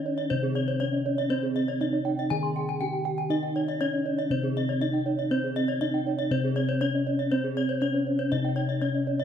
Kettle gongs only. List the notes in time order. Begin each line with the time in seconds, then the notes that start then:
Already playing: D#4
0.31 C3
0.80 C#4
1.30 C4
1.81 C#4
2.31 D#3
2.81 C#4
3.30 D#4
3.81 C#4
4.30 C3
4.81 C#4
5.31 C4
5.80 C#4
6.31 C3
6.81 C#4
7.32 C4
7.82 C#4
8.32 C3
8.82 C#4